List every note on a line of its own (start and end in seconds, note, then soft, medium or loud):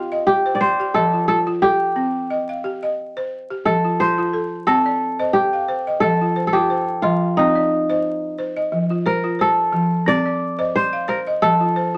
0.00 1.11 F4 medium
0.00 0.26 G4 medium
0.00 0.27 G4 medium
0.00 0.11 D#5 medium
0.00 0.28 F5 medium
0.12 0.61 D#5 medium
0.27 1.62 G4 medium
0.46 0.61 C5 medium
0.55 1.66 D5 medium
0.61 1.79 C5 loud
0.80 1.29 G4 medium
0.94 1.29 F3 medium
0.94 1.27 A4 medium
1.13 1.28 F4 medium
1.28 1.46 F4 medium
1.28 1.37 A4 medium
1.47 1.81 F4 medium
1.62 4.29 G4 medium
1.62 2.15 A4 medium
1.96 2.30 C4 medium
2.30 2.82 D#5 medium
2.49 2.98 F5 medium
2.64 2.98 G4 medium
2.83 3.32 D#5 medium
3.17 3.32 C5 medium
3.50 4.00 G4 medium
3.65 3.99 F3 medium
3.65 4.66 A4 medium
3.84 3.99 F4 medium
4.00 4.17 F4 medium
4.00 5.19 C5 medium
4.18 4.52 F4 medium
4.33 4.86 A4 medium
4.67 5.01 C4 medium
4.67 5.99 A4 medium
4.67 5.19 G5 medium
4.86 5.35 D5 medium
5.19 5.53 C5 medium
5.19 5.69 D#5 medium
5.33 6.52 G4 medium
5.53 6.02 F5 medium
5.68 6.02 C5 medium
5.87 6.21 D#5 medium
6.00 6.36 F3 medium
6.00 6.47 A4 medium
6.21 6.53 F4 medium
6.36 6.69 C5 medium
6.47 7.79 A4 medium
6.53 6.88 F4 medium
6.53 7.94 G4 medium
6.70 7.22 C5 medium
7.02 7.37 F3 medium
7.02 8.54 F4 medium
7.37 7.71 C4 medium
7.37 8.99 D#4 medium
7.37 7.89 G5 medium
7.56 8.05 D5 medium
7.90 8.23 C5 medium
7.90 8.39 D#5 medium
8.38 8.72 C5 medium
8.56 8.90 D#5 medium
8.72 9.06 F3 medium
8.90 9.23 F4 medium
9.06 9.47 A#4 medium
9.06 9.38 C5 medium
9.24 9.58 F4 medium
9.39 10.73 A4 medium
9.39 9.92 C5 medium
9.73 10.07 F3 medium
10.06 10.40 C4 medium
10.06 11.19 D5 medium
10.26 10.75 D5 medium
10.59 10.93 C5 medium
10.59 11.08 D#5 medium
10.76 11.94 C5 medium
10.93 11.42 F5 medium
11.08 11.18 A#4 medium
11.08 11.42 C5 medium
11.27 11.61 D#5 medium
11.42 11.76 F3 medium
11.42 11.98 A4 medium
11.61 11.93 F4 medium
11.76 11.98 C5 medium
11.95 11.98 F4 medium